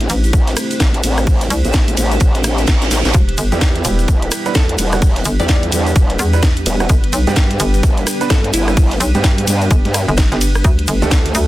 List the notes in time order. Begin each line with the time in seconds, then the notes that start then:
Already playing: A3 C4 D4 E4 G4 C5
0.00 snare, closed hi-hat
0.06 A1 C5, snare, closed hi-hat, open hi-hat, ride, shaker
0.24 closed hi-hat, shaker
0.33 A1, kick, closed hi-hat, shaker
0.47 snare, closed hi-hat
0.56 cross-stick, closed hi-hat, open hi-hat, ride, shaker
0.71 closed hi-hat, shaker
0.80 A1, kick, snare, closed hi-hat, shaker
0.94 closed hi-hat
1.03 A1, closed hi-hat, open hi-hat, ride, shaker
1.17 cross-stick, snare, closed hi-hat, shaker
1.27 D4, kick, closed hi-hat, open hi-hat, shaker
1.41 snare, closed hi-hat, shaker
1.50 C2, closed hi-hat, open hi-hat, ride, shaker
1.64 A1, closed hi-hat, shaker
1.73 kick, snare, closed hi-hat, shaker
1.88 open hi-hat, shaker
1.97 A1, closed hi-hat, open hi-hat, ride, shaker
2.12 closed hi-hat, shaker
2.20 A1, kick, closed hi-hat, reverse cymbal, shaker
2.35 snare, closed hi-hat, shaker
2.44 cross-stick, closed hi-hat, open hi-hat, ride, shaker
2.58 closed hi-hat, shaker
2.67 A1, kick, snare, closed hi-hat, shaker
2.82 snare, closed hi-hat, shaker
2.91 A1, snare, closed hi-hat, open hi-hat, ride, shaker
3.05 A1, snare, closed hi-hat, shaker
3.14 E1 G3 B3 D4 E4 B4, kick, closed hi-hat, shaker
3.29 closed hi-hat
3.38 G1, closed hi-hat, open hi-hat, ride, shaker
3.51 E2 G3 B3 E4 G4, snare, closed hi-hat, shaker
3.61 kick, snare, closed hi-hat, shaker
3.76 snare, closed hi-hat
3.84 E1, closed hi-hat, open hi-hat, ride, shaker
3.99 closed hi-hat, shaker
4.08 E1, kick, closed hi-hat, shaker
4.22 closed hi-hat
4.31 cross-stick, closed hi-hat, open hi-hat, ride, shaker
4.46 G3 B3 E4 B4, closed hi-hat, shaker
4.55 E2 A4, kick, snare, closed hi-hat, shaker
4.69 closed hi-hat
4.78 E1, closed hi-hat, open hi-hat, ride, shaker
4.84 B4
4.92 G3 B3 E4 F#4, cross-stick, snare, closed hi-hat, shaker
5.02 kick, closed hi-hat, open hi-hat, shaker
5.16 snare, closed hi-hat
5.25 G1, closed hi-hat, open hi-hat, ride, shaker
5.40 E2 G3 B3 E4 G4 D5, closed hi-hat, shaker
5.48 D5, kick, snare, closed hi-hat, shaker
5.63 open hi-hat
5.72 E2, closed hi-hat, open hi-hat, ride, shaker
5.87 closed hi-hat, shaker
5.96 E1, kick, closed hi-hat, shaker
6.09 snare, closed hi-hat
6.19 E2, cross-stick, closed hi-hat, open hi-hat, ride, shaker
6.33 G3 B3 E4 B4, closed hi-hat, shaker
6.43 kick, snare, closed hi-hat, shaker
6.57 closed hi-hat
6.66 E1, closed hi-hat, open hi-hat, ride, shaker
6.80 G3 B3 E4 F#4, cross-stick, closed hi-hat, shaker
6.89 G1 D4, kick, closed hi-hat, shaker
7.04 closed hi-hat
7.12 B1, closed hi-hat, open hi-hat, ride, shaker
7.27 G2 G3 B3 D4 G4, snare, closed hi-hat, shaker
7.36 kick, snare, closed hi-hat, shaker
7.51 snare, closed hi-hat
7.60 G1, closed hi-hat, open hi-hat, ride, shaker
7.74 closed hi-hat, shaker
7.83 G1, kick, closed hi-hat, shaker
7.98 closed hi-hat
8.07 cross-stick, closed hi-hat, open hi-hat, ride, shaker
8.21 G3 B3 D4 B4, closed hi-hat, shaker
8.30 G2 A4, kick, snare, closed hi-hat, shaker
8.44 closed hi-hat
8.53 G1 E4, closed hi-hat, open hi-hat, ride, shaker
8.68 G3 B3 D4 E4, cross-stick, snare, closed hi-hat, shaker
8.77 kick, closed hi-hat, open hi-hat, shaker
8.91 snare, closed hi-hat
9.00 B1, closed hi-hat, open hi-hat, ride, shaker
9.15 G2 G3 B3 D4 G4, closed hi-hat, shaker
9.24 kick, snare, closed hi-hat, shaker
9.38 open hi-hat
9.47 G2, closed hi-hat, open hi-hat, ride, shaker
9.61 closed hi-hat, shaker
9.70 G1, kick, closed hi-hat, shaker
9.85 G2, snare, closed hi-hat
9.94 cross-stick, closed hi-hat, open hi-hat, ride, shaker
10.08 G1, closed hi-hat, shaker
10.17 kick, snare, closed hi-hat, shaker
10.32 G1 G3 B3 D4 G4, snare, closed hi-hat
10.41 closed hi-hat, open hi-hat, ride, shaker
10.55 cross-stick, closed hi-hat, shaker
10.64 D2 A3 A4, kick, closed hi-hat, shaker
10.79 closed hi-hat
10.87 G1, closed hi-hat, open hi-hat, ride, shaker
11.02 D2 A3 D4 G4 A4, snare, closed hi-hat, shaker
11.11 kick, snare, closed hi-hat, shaker
11.26 snare, closed hi-hat
11.35 D2, closed hi-hat, open hi-hat, ride, shaker